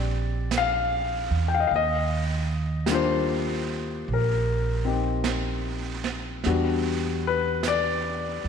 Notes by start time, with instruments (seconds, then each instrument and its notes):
Already playing: upright bass A#1, grand piano G#3 C4 D4 G4 D5
0.51 brush sweep, snare, hi-hat pedal
0.58 grand piano F5
1.30 upright bass E2
1.48 grand piano G5
1.54 grand piano F5
1.60 grand piano D#5
1.67 upright bass D#2, grand piano F5, brush sweep
1.76 grand piano D#5
2.86 grand piano G3 A#3 D4, brush sweep, snare, hi-hat pedal
2.91 grand piano F4 C5
4.05 upright bass A#1, brush sweep
4.13 grand piano A#4
4.85 grand piano C4 D#4 G4
5.24 brush sweep, snare, hi-hat pedal
6.04 snare
6.44 upright bass E2, grand piano G3 B3 D4, brush sweep, snare
6.48 grand piano F#4
7.27 grand piano B4
7.63 brush sweep, snare, hi-hat pedal
7.68 grand piano D5
8.44 upright bass E2